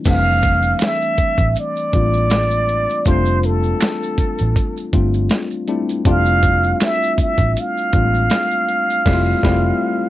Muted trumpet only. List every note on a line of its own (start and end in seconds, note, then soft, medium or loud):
0.09 0.86 F5 loud
0.85 1.58 E5 loud
1.59 3.09 D5 loud
3.07 3.47 C5 loud
3.46 4.95 A4 medium
6.08 6.85 F5 loud
6.84 7.20 E5 loud
7.22 7.61 E5 medium
7.60 10.09 F5 medium